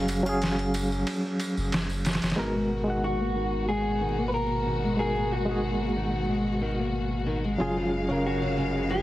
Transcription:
Already playing: F#1 F#3 C#4 F#4 G#4 F5
0.08 ride, tambourine
0.23 F#3 C#4 F5, ride, tambourine, triangle
0.29 G#4
0.42 snare, ride, tambourine
0.58 ride, tambourine
0.74 ride, tambourine
0.92 tambourine
1.07 ride, tambourine
1.40 ride, tambourine
1.57 F#1, tambourine
1.72 F#1, snare, ride, tambourine
1.89 tambourine
2.05 snare, ride, tambourine
2.13 snare, ride
2.22 F#1, snare, ride, tambourine
2.30 snare, ride
2.36 G#1 B2 D#3 G#3 B3 F#4 A#4
2.55 G#3
2.84 D#3 G#3 F#4
2.90 F#5
3.04 F#4
3.20 A#3
3.35 D#3
3.68 G#3 G#4
4.01 D#3
4.18 A#3
4.28 B4
4.34 A#4
4.66 D#3
4.84 G#3
4.97 D#3 G#3 F#4 G#4 A#4
5.16 G#3
5.32 F#4
5.45 D#3 G#3 F#4
5.51 G#4
5.81 A#3
5.96 D#3
6.29 G#3
6.62 D#3
6.79 A#3
7.26 D#3
7.44 G#3
7.58 F#1 C#3 F#3 G#3 C#4 F4 G#4 F5
7.77 F3
8.08 C#3 C#4 A#4 F5
8.27 F#4
8.42 F#3
8.57 C#3
8.90 F3 G#4

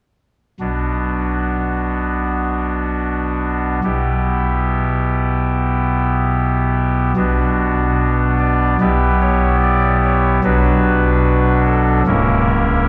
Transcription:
0.60 B1 B2 B3 D4 F#4
3.84 B1 B2 B3 E4 G4
7.17 B1 B2 B3 D4 F#4
8.39 D5
8.81 B1 B2 B3 E4 G4 B4
9.22 C#5
9.62 D5
10.04 C#5
10.44 B1 B2 F#3 D4 F#4 B4
11.67 A4
12.07 C#1 C#2 A#3 C#4 E4 A#4

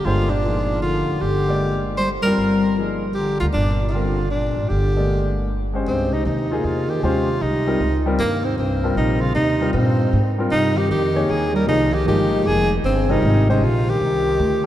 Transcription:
0.04 G1 D3 G#3 D4 F4 G4 C5
0.29 A#2 D4
0.44 D#3 F3 A#3 G#4
0.81 D3 F4
1.08 F1
1.20 G1 D3 G4
1.48 G#3 A#3 D5 D#5
1.97 G3 C5
2.22 F#1 G3 C4 F4 A#4
2.27 A#4
2.37 G1
2.77 F3 A#3 D#4 G#4
3.14 D3 G4
3.40 D2 D3 F4
3.53 G1 A#2 D4
3.88 C3 D#4 F4
3.92 D3 G3 C4 F4 A#4
4.31 A#2 D4
4.56 G#1
4.69 G1 D3 G4
4.96 G#3 A#3 D5 D#5
5.73 G#3 C#4 G4 C5
5.87 C2 G2 C4
6.12 C3 D#4
6.25 D#2 C3 D#4
6.51 A#3 D#4 F4 G#4
6.64 E2 C3 F4
6.89 D#3 G4
7.02 D#2 C3 G#3 C#4 F4 G4 C5
7.40 C2 C3 D#4
7.67 G3 C4 F4 A#4
7.80 C#2
8.06 G3 C4 F4 A#4
8.19 D#2 G2 A#3
8.44 G#2 C4
8.57 C2 G2 C4
8.84 G3 C4 F4 A#4
8.95 A#1 C3 D#4
9.20 C#3 F4
9.34 D#2 C3 D#4
9.61 G3 C4 F4 A#4
9.73 G2 A#2 C4
10.13 G#2
10.38 G3 C4 F4 A#4
10.50 G2 C3 D#4
10.75 D#3 G4
10.89 F2 D#3 G4
11.15 A#3 D#4 G#4 C#5
11.28 D#2 D#3 G#4
11.54 G3 A#4
11.67 C2 C3 F3 A#3 D#4 G#4
11.92 D#3 G4
12.05 G1 D#3 F3 G#3 A#3 D#4 G4
12.45 F1 D#3 G#4
12.84 G1 G2 C4
13.09 C3 G3 C4 D#4 F4 A#4
13.22 G#1
13.49 C3 G#3 C#4 D#4 G4 C5
13.61 A#1 C3 F4
13.89 D#3 G4
14.00 C2
14.39 D2

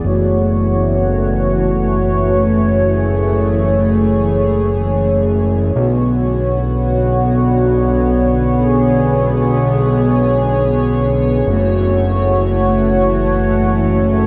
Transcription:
0.05 F#1 E3 A3 F#4 C#5
2.91 G#4
5.76 B1 D3 B3 F#4 C#5
8.62 G#4
11.47 F#1 E3 A3 F#4

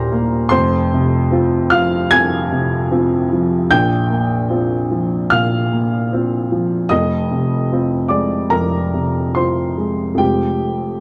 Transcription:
Already playing: D#2 A#2 A#3 D#4 G4 A#4 C5 A#5 C6
0.12 A#3
0.49 F1 F2 C5 C6
0.94 C3
1.31 C4 F4
1.70 F3 F5 F6
2.11 F2 G#5 G#6
2.52 C3
2.91 C4 F4
3.33 F3
3.71 A#1 A#2 G5 G6
4.10 A#3
4.50 C4 F4
4.91 F3
5.30 A#2 F5 F6
5.72 A#3
6.13 C4 F4
6.52 F3
6.89 F1 F2 D#5 D#6
7.31 C3
7.72 C4 F4
8.08 G#3 D5 D6
8.50 F2 A#4 A#5
8.94 C3
9.35 C4 F4 C5 C6
9.78 G#3
10.14 F2 G#3 C4 G5
10.18 F1 F4 G4

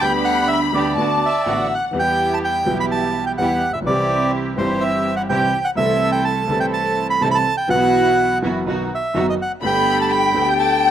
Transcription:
0.00 D2 D3 G3 B3 D4 G4 G5 B5
0.25 F#5
0.48 E5
0.72 D2 D3 G3 B3 D4 G4 D5
0.96 D2 D3 A3 B3 D4 F#4 A5
1.26 E5
1.45 A1 A2 D3 A3 B3 D4 F#4 F#5
1.75 F#5
1.93 E2 E3 G3 B3 E4 G4
1.99 G5
2.34 A5
2.44 G5
2.65 B1 B2 E3 G3 B3 E4 G4
2.69 G4
2.80 B5
2.91 A5
3.27 G5
3.38 E2 E3 G3 B3 E4 G4 F#5
3.70 A1 E5
3.75 A#1
3.82 B1 E3 G3
3.87 C2 C3 C4 E4 G4 D5
4.56 G1 G2 E3 G3 C4 E4 G4 C5
4.81 E5
5.16 F#5
5.29 C2 C3 E3 G3 C4 E4 G4 G5
5.65 F#5
5.77 C2 C3 E3 A3 C4 E4 A4 E5
6.12 G5
6.25 A5
6.48 C2 C3 E3 A3 C4 E4 A4
6.60 G5
6.73 A5
7.10 B5
7.21 C2 C3 E3 A3 C4 E4 A4 A5
7.31 A5 B5
7.57 G5
7.67 B1 B2 E3 F#3 B3 E4 F#4 F#5
8.42 F#1 F#2 E3 F#3 B3 E4 F#4
8.66 B1 B2 D#3 F#3 B3 D#4 F#4
8.95 E5
9.14 F#1 F#2 D#3 F#3 B3 D#4 F#4
9.30 D#5
9.42 F#5
9.62 G1 G2 D3 A3 B3 G4 A4 B5
9.66 G5
10.01 A5
10.09 G5 B5
10.33 D2 D3 A3 B3 G4 A4
10.50 G5
10.59 A5

